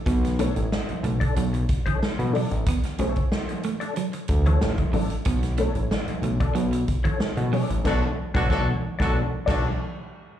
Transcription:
<<
  \new Staff \with { instrumentName = "Clean electric guitar" } { \time 4/4 \key b \minor \tempo 4 = 92 r8 <d' a' cis''>16 r4 <d' a' d''>16 r8. <d' a' cis''>16 r8 <d' a' d''>16 r16 | r8 <d' a' cis''>16 r4 <d' a' d''>16 r8. <d' a' cis''>16 r8 <d' a' d''>16 r16 | r8 <d' a' cis''>16 r4 <d' a' d''>16 r8. <d' a' cis''>16 r8 <d' a' d''>16 r16 | <d' a' d''>8 r16 <d' a' cis''>16 <d' a' cis''>8 r16 <d' a' d''>8 r16 <d' a' d''>8 r4 | }
  \new Staff \with { instrumentName = "Horn section" } { \time 4/4 \key b \minor r1 | r1 | r1 | <d' fis' a'>8 r16 <d' fis' a'>16 <d' fis' a'>8 r16 <d' fis' a'>8 r16 <d' fis' a'>8 r4 | }
  \new Staff \with { instrumentName = "Clean electric guitar" } { \clef bass \time 4/4 \key b \minor b16 r16 a16 r8. a16 r16 fis16 r8 e16 r8 fis16 r16 | b16 r16 a16 r8. a16 r16 fis16 r8 e16 r8 fis16 r16 | b16 r16 a16 r8. a16 r16 fis16 r8 e16 r8 fis16 r16 | r1 | }
  \new Staff \with { instrumentName = "Analog synth bass" } { \clef bass \time 4/4 \key b \minor b,,8. a,,16 r16 b,,16 b,,16 r16 b,,8 r8. b,16 r16 a,,16 | r8 b,,16 r4. r16 d,8 a,,16 r16 a,,16 r16 | b,,8. a,,16 r16 b,,16 b,,16 r16 b,,8 r8. b,16 r16 a,,16 | b,,8 r16 b,,16 b,,8 r16 b,,8 r16 b,,8 r4 | }
  \new DrumStaff \with { instrumentName = "Drums" } \drummode { \time 4/4 <hh bd>16 <hh sn>16 hh16 hh16 sn16 hh16 hh16 <hh bd>16 hh16 hh16 <hh bd>16 <hh bd>16 sn16 hh16 hho16 hh16 | <hh bd>16 <hh sn>16 hh16 <hh bd>16 sn16 hh16 hh16 hh16 hh16 hh16 <hh bd>16 hh16 sn16 <hh bd>16 hho16 hh16 | <hh bd>16 <hh sn>16 hh16 hh16 sn16 hh16 hh16 <hh bd>16 hh16 hh16 <hh bd>16 <hh bd>16 sn16 hh16 hho16 hh16 | <cymc bd sn>8. <bd sn>16 <bd sn>8. <bd sn>16 r8 <cymc bd sn>8 r4 | }
>>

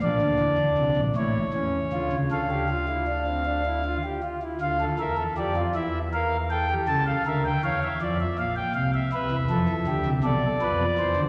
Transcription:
<<
  \new Staff \with { instrumentName = "Pipe organ" } { \time 6/8 \key d \minor \tempo 4. = 53 << { d''4. cis''4. | f''2~ f''8 r8 | f''8 e''8 d''8 e''8 f''8 g''8 | a''16 f''16 e''16 g''16 f''16 e''16 r16 e''16 f''16 g''16 f''16 e''16 |
e''4. d''4. | } \\ { d'4. e'8 cis'8 f'8 | a'16 g'16 f'16 e'16 d'16 c'16 d'16 e'16 f'16 g'16 f'16 e'16 | f'16 a'16 bes'16 a'16 g'16 f'16 e'8 bes'8 a'16 g'16 | a'8 bes'8 cis''8 d''4. |
b'8 a'8 g'8 a'8 b'8 c''8 | } >> }
  \new Staff \with { instrumentName = "Pipe organ" } { \clef bass \time 6/8 \key d \minor <bes,, bes,>16 <d, d>16 <e, e>16 <d, d>16 <c, c>16 <bes,, bes,>16 <a,, a,>8 <e, e>8 <d, d>16 <cis, cis>16 | <d, d>2~ <d, d>8 r8 | <d, d>8 <e, e>8 <f, f>8 <e, e>4. | <cis, cis>8 <d, d>8 <e, e>8 <f, f>8 <bes,, bes,>8 <c, c>8 |
<c, c>16 <e, e>16 <f, f>16 <e, e>16 <d, d>16 <c, c>16 <b,, b,>8 <f, f>8 <e, e>16 <d, d>16 | }
>>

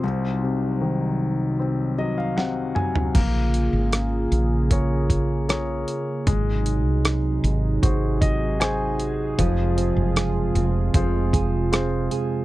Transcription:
<<
  \new Staff \with { instrumentName = "Grand piano" } { \time 4/4 \key bes \minor \tempo 4 = 77 << { r2 r8 ees''16 f''16 ges''8 aes''8 | r1 | r2 r8 ees''8 aes''4 | r1 | } \\ { c,8 c8 ees4 c'8 ges8 c8 ges8 | bes2 <aes' bes' des''>4 <aes' bes' des''>4 | aes2 <ges' aes' c''>4 <ges' aes' c''>4 | f2 <f' aes' c''>4 <f' aes' c''>4 | } >> }
  \new Staff \with { instrumentName = "Nylon-string guitar" } { \time 4/4 \key bes \minor r1 | r1 | r1 | <f, aes'>8 c'8 aes'8 c'8 f8 aes'8 c'8 aes'8 | }
  \new Staff \with { instrumentName = "Analog synth pad" } { \time 4/4 \key bes \minor << { c''1 | aes'1 | aes'1~ | aes'1 | } \\ { <c ges ees'>1 | <des bes f'>1 | <c ges ees'>1 | <c aes f'>1 | } >> }
  \new Staff \with { instrumentName = "Fretless electric bass" } { \clef bass \time 4/4 \key bes \minor r1 | bes,,8. aes,,8. bes,,2 r8 | aes,,8. c,8. aes,,8 aes,,2 | f,,8. ges,,8. f,,8 f,,4. r8 | }
  \new DrumStaff \with { instrumentName = "Drums" } \drummode { \time 4/4 r4 r4 r4 sn8 toml16 tomfh16 | <cymc hh bd>8 hh8 <hh ss>8 hh8 <hh bd>8 <hh bd>8 <hh ss>8 hh8 | <hh bd>8 hh8 <hh ss>8 hh8 <hh bd>8 <hh bd>8 <hh ss>8 hh8 | <hh bd>8 hh8 <hh ss>8 hh8 <hh bd>8 <hh bd>8 <hh ss>8 hh8 | }
>>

